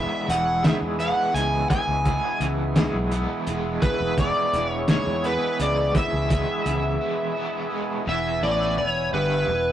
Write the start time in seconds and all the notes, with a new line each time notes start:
Already playing: E3 G#3 B3 E4 G#4 E5
0.28 E1 E3 F#5, closed hi-hat
0.63 G#3 E5, snare, closed hi-hat
0.81 E2
0.99 B3 F#5, closed hi-hat
1.34 C#2 G#3 G#5, closed hi-hat
1.70 E3 G#5, kick, closed hi-hat
1.87 C#2
2.05 G#3, kick, closed hi-hat
2.40 C#2 E3, closed hi-hat
2.76 G#3, snare, closed hi-hat
2.94 B1
3.11 B3, closed hi-hat
3.47 E1 G#3, closed hi-hat
3.82 E3 B4, kick, closed hi-hat
4.00 E1
4.17 G#3 D5, kick, closed hi-hat
4.53 E1 E3, closed hi-hat
4.70 C#5
4.88 G#3 C#5, snare, closed hi-hat
5.06 E2
5.24 B3 B4, closed hi-hat
5.59 C#2 G#3 D5, closed hi-hat
5.95 E3 E5, kick, closed hi-hat
6.13 C#2
6.29 G#3, kick, closed hi-hat
6.65 C#2 E3, closed hi-hat
7.01 G#3
7.37 B3
7.71 G#3
8.05 E1 E2 E3 B3 E5 G#5
8.10 E4
8.42 A1 A2 A3 D5
8.77 E1 E2 C#5
9.13 G1 G2 G3 B4
9.48 E1 E2